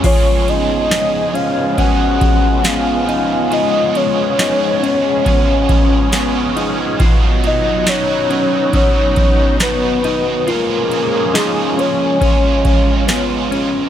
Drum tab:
CC |x-------|--------|--------|--------|
RD |-xxxxxxx|xxxxxxxx|xxxxxxxx|xxxxxxxx|
TB |--x---x-|--x---x-|--x---x-|--x---x-|
SD |--o---o-|--o---o-|--o---o-|--o---o-|
BD |o---oo--|----oo--|o---oo--|----oo--|